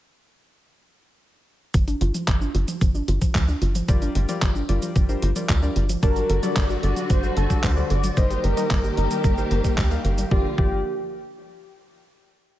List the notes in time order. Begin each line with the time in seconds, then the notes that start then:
1.74 G1 F3, kick, closed hi-hat, cabasa
1.88 D4, closed hi-hat, cabasa
2.01 G1 F4, closed hi-hat
2.14 F3, closed hi-hat, cabasa
2.28 G1 F3, kick, clap, closed hi-hat, cabasa
2.41 D4, cabasa
2.55 G1 F4, closed hi-hat
2.68 F3, closed hi-hat, cabasa
2.81 G1 F3, kick, closed hi-hat, cabasa
2.95 D4, cabasa
3.08 G1 F4, closed hi-hat
3.22 F3, kick, closed hi-hat, cabasa
3.35 D2 F3, kick, clap, closed hi-hat, cabasa
3.48 D4, cabasa
3.62 G1 F4, closed hi-hat
3.75 F3, closed hi-hat, cabasa
3.88 G1 F3 G3 F4 G4 A#4 D5, kick, closed hi-hat, cabasa
4.02 D4, closed hi-hat, cabasa
4.15 G1 F4, closed hi-hat
4.29 F3 G3 F4 G4 A#4 D5, closed hi-hat, cabasa
4.42 G1 F3, kick, clap, closed hi-hat, cabasa
4.55 D4, cabasa
4.69 G1 G3 F4 G4 A#4 D5, closed hi-hat
4.82 F3, closed hi-hat, cabasa
4.96 G1 F3, kick, closed hi-hat, cabasa
5.09 G3 D4 F4 G4 A#4 C5, cabasa
5.22 G1 F4, closed hi-hat
5.36 F3 G3 F4 G4 A#4 D5, closed hi-hat, cabasa
5.49 D2 F3, kick, clap, closed hi-hat, cabasa
5.62 G3 D4 F4 G4 A#4 D5, cabasa
5.76 G1 F4, closed hi-hat
5.89 F3, closed hi-hat, cabasa
6.03 G1 D3 F#3 G3 D4 F#4 A#4 D5 A5, kick, closed hi-hat, cabasa
6.16 F#4, closed hi-hat, cabasa
6.29 G1 A4, closed hi-hat
6.43 F#3 G3 D4 F#4 A4 D5, closed hi-hat, cabasa
6.56 G1 F#3, kick, clap, closed hi-hat, cabasa
6.70 F#4, cabasa
6.83 G1 G3 D4 F#4 A4 D5, closed hi-hat
6.96 F#3, closed hi-hat, cabasa
7.10 G1 F#3 C5, kick, closed hi-hat, cabasa
7.23 G3 D4 F#4 A4 C5, cabasa
7.37 G1 A4, closed hi-hat
7.50 F#3 G3 D4 F#4 A4 D5, kick, closed hi-hat, cabasa
7.63 D2 F#3 C5, kick, clap, closed hi-hat, cabasa
7.77 G3 D4 F#4 A4 D5, cabasa
7.90 G1 A4 D5, closed hi-hat
8.04 F#3, closed hi-hat, cabasa
8.17 G1 D#3 G3 A#3 D#4 G4 A#4 C5 D#5, kick, closed hi-hat, cabasa
8.30 G4, closed hi-hat, cabasa
8.44 G1 A#4, closed hi-hat
8.57 G3 D#4 G4 A#4 D#5, closed hi-hat, cabasa
8.71 G1 G3, kick, clap, closed hi-hat, cabasa
8.84 G4, cabasa
8.97 G1 G3 D#4 G4 A#4 D#5, closed hi-hat
9.11 G3, closed hi-hat, cabasa
9.24 G1 G3, kick, closed hi-hat, cabasa
9.38 G3 D#4 G4 A#4 C5, cabasa
9.51 G1 G3 D#4 G4 A#4 C5, closed hi-hat
9.64 G3, kick, closed hi-hat, cabasa
9.78 D2 G3, kick, clap, closed hi-hat, cabasa
9.91 G3 D#4 G4 A#4 F5, closed hi-hat, cabasa
10.05 G1 A#4, closed hi-hat
10.18 G3, closed hi-hat, cabasa
10.31 G1 D3 F3 G3 A#3 F4 G4 A#4 D5, kick
10.58 G1 F3 F4 G4 A#4 D5, kick